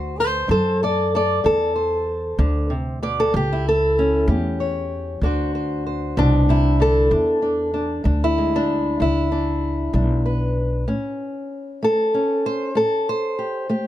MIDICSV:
0, 0, Header, 1, 3, 480
1, 0, Start_track
1, 0, Tempo, 628272
1, 2549, Time_signature, 12, 3, 24, 8
1, 10597, End_track
2, 0, Start_track
2, 0, Title_t, "Steel-string acoustic guitar"
2, 0, Program_c, 0, 25
2, 0, Note_on_c, 0, 50, 67
2, 0, Note_on_c, 0, 66, 49
2, 0, Note_on_c, 0, 72, 47
2, 87, Note_off_c, 0, 50, 0
2, 138, Note_off_c, 0, 72, 0
2, 148, Note_off_c, 0, 66, 0
2, 148, Note_on_c, 0, 69, 79
2, 153, Note_on_c, 0, 72, 83
2, 366, Note_on_c, 0, 62, 59
2, 379, Note_off_c, 0, 69, 0
2, 383, Note_off_c, 0, 72, 0
2, 388, Note_on_c, 0, 69, 73
2, 392, Note_on_c, 0, 72, 85
2, 625, Note_off_c, 0, 69, 0
2, 627, Note_off_c, 0, 72, 0
2, 633, Note_on_c, 0, 69, 69
2, 640, Note_on_c, 0, 74, 74
2, 807, Note_off_c, 0, 62, 0
2, 868, Note_off_c, 0, 69, 0
2, 872, Note_off_c, 0, 74, 0
2, 878, Note_on_c, 0, 69, 71
2, 888, Note_on_c, 0, 74, 81
2, 1100, Note_on_c, 0, 50, 75
2, 1105, Note_off_c, 0, 69, 0
2, 1114, Note_on_c, 0, 69, 93
2, 1338, Note_off_c, 0, 74, 0
2, 1341, Note_on_c, 0, 72, 49
2, 1536, Note_off_c, 0, 50, 0
2, 1826, Note_on_c, 0, 50, 64
2, 1831, Note_off_c, 0, 69, 0
2, 2063, Note_on_c, 0, 48, 62
2, 2067, Note_off_c, 0, 50, 0
2, 2306, Note_off_c, 0, 48, 0
2, 2306, Note_off_c, 0, 72, 0
2, 2312, Note_on_c, 0, 47, 67
2, 2315, Note_on_c, 0, 74, 90
2, 2443, Note_on_c, 0, 69, 92
2, 2548, Note_off_c, 0, 47, 0
2, 2551, Note_off_c, 0, 74, 0
2, 2551, Note_on_c, 0, 45, 69
2, 2556, Note_off_c, 0, 69, 0
2, 2570, Note_on_c, 0, 67, 84
2, 2693, Note_on_c, 0, 64, 68
2, 2800, Note_off_c, 0, 67, 0
2, 2815, Note_on_c, 0, 69, 93
2, 2983, Note_off_c, 0, 45, 0
2, 3046, Note_on_c, 0, 61, 53
2, 3277, Note_on_c, 0, 57, 57
2, 3280, Note_off_c, 0, 69, 0
2, 3283, Note_off_c, 0, 64, 0
2, 3283, Note_on_c, 0, 67, 46
2, 3515, Note_on_c, 0, 73, 46
2, 3707, Note_off_c, 0, 57, 0
2, 3965, Note_off_c, 0, 73, 0
2, 3969, Note_off_c, 0, 67, 0
2, 3971, Note_off_c, 0, 61, 0
2, 3996, Note_on_c, 0, 50, 69
2, 4001, Note_on_c, 0, 62, 52
2, 4005, Note_on_c, 0, 66, 46
2, 4016, Note_on_c, 0, 72, 50
2, 4230, Note_off_c, 0, 72, 0
2, 4240, Note_on_c, 0, 72, 49
2, 4427, Note_off_c, 0, 50, 0
2, 4472, Note_off_c, 0, 72, 0
2, 4481, Note_on_c, 0, 72, 49
2, 4714, Note_on_c, 0, 47, 66
2, 4717, Note_off_c, 0, 62, 0
2, 4725, Note_on_c, 0, 62, 96
2, 4954, Note_off_c, 0, 47, 0
2, 4957, Note_off_c, 0, 72, 0
2, 4959, Note_on_c, 0, 48, 67
2, 4966, Note_on_c, 0, 64, 83
2, 5195, Note_on_c, 0, 50, 61
2, 5196, Note_off_c, 0, 48, 0
2, 5200, Note_off_c, 0, 66, 0
2, 5208, Note_on_c, 0, 69, 96
2, 5426, Note_off_c, 0, 62, 0
2, 5430, Note_on_c, 0, 40, 68
2, 5434, Note_off_c, 0, 50, 0
2, 5435, Note_on_c, 0, 62, 46
2, 5440, Note_off_c, 0, 64, 0
2, 5661, Note_off_c, 0, 62, 0
2, 5670, Note_on_c, 0, 62, 43
2, 5863, Note_off_c, 0, 40, 0
2, 5902, Note_off_c, 0, 62, 0
2, 5911, Note_on_c, 0, 62, 54
2, 6141, Note_off_c, 0, 62, 0
2, 6142, Note_on_c, 0, 56, 63
2, 6150, Note_on_c, 0, 62, 46
2, 6280, Note_off_c, 0, 69, 0
2, 6295, Note_on_c, 0, 64, 90
2, 6387, Note_off_c, 0, 56, 0
2, 6402, Note_on_c, 0, 56, 45
2, 6511, Note_off_c, 0, 62, 0
2, 6538, Note_on_c, 0, 62, 84
2, 6874, Note_on_c, 0, 40, 77
2, 6880, Note_off_c, 0, 64, 0
2, 6889, Note_on_c, 0, 64, 92
2, 7109, Note_off_c, 0, 62, 0
2, 7118, Note_on_c, 0, 62, 51
2, 7305, Note_off_c, 0, 40, 0
2, 7580, Note_off_c, 0, 56, 0
2, 7589, Note_on_c, 0, 56, 60
2, 7590, Note_off_c, 0, 62, 0
2, 7599, Note_on_c, 0, 62, 47
2, 7832, Note_off_c, 0, 64, 0
2, 7835, Note_on_c, 0, 71, 46
2, 8021, Note_off_c, 0, 56, 0
2, 8283, Note_off_c, 0, 71, 0
2, 8285, Note_off_c, 0, 62, 0
2, 8310, Note_on_c, 0, 45, 70
2, 8313, Note_on_c, 0, 61, 45
2, 8740, Note_off_c, 0, 45, 0
2, 9035, Note_on_c, 0, 57, 62
2, 9048, Note_on_c, 0, 69, 95
2, 9274, Note_off_c, 0, 61, 0
2, 9277, Note_on_c, 0, 61, 45
2, 9462, Note_off_c, 0, 57, 0
2, 9516, Note_off_c, 0, 69, 0
2, 9520, Note_on_c, 0, 72, 89
2, 9743, Note_on_c, 0, 45, 71
2, 9752, Note_off_c, 0, 72, 0
2, 9754, Note_on_c, 0, 69, 89
2, 9989, Note_off_c, 0, 69, 0
2, 10002, Note_on_c, 0, 72, 90
2, 10174, Note_off_c, 0, 45, 0
2, 10227, Note_on_c, 0, 67, 51
2, 10463, Note_on_c, 0, 57, 65
2, 10465, Note_off_c, 0, 67, 0
2, 10468, Note_on_c, 0, 67, 50
2, 10597, Note_off_c, 0, 57, 0
2, 10597, Note_off_c, 0, 61, 0
2, 10597, Note_off_c, 0, 67, 0
2, 10597, Note_off_c, 0, 72, 0
2, 10597, End_track
3, 0, Start_track
3, 0, Title_t, "Upright bass"
3, 0, Program_c, 1, 32
3, 0, Note_on_c, 1, 38, 94
3, 361, Note_off_c, 1, 38, 0
3, 374, Note_on_c, 1, 42, 86
3, 1079, Note_off_c, 1, 42, 0
3, 1105, Note_on_c, 1, 40, 80
3, 1805, Note_off_c, 1, 40, 0
3, 1823, Note_on_c, 1, 38, 94
3, 2525, Note_off_c, 1, 38, 0
3, 2550, Note_on_c, 1, 37, 92
3, 3250, Note_off_c, 1, 37, 0
3, 3267, Note_on_c, 1, 40, 92
3, 3969, Note_off_c, 1, 40, 0
3, 3984, Note_on_c, 1, 38, 79
3, 4687, Note_off_c, 1, 38, 0
3, 4715, Note_on_c, 1, 36, 95
3, 5413, Note_off_c, 1, 36, 0
3, 5433, Note_on_c, 1, 40, 88
3, 6131, Note_off_c, 1, 40, 0
3, 6152, Note_on_c, 1, 38, 94
3, 6850, Note_off_c, 1, 38, 0
3, 6878, Note_on_c, 1, 37, 79
3, 7573, Note_off_c, 1, 37, 0
3, 7592, Note_on_c, 1, 35, 89
3, 8288, Note_off_c, 1, 35, 0
3, 10597, End_track
0, 0, End_of_file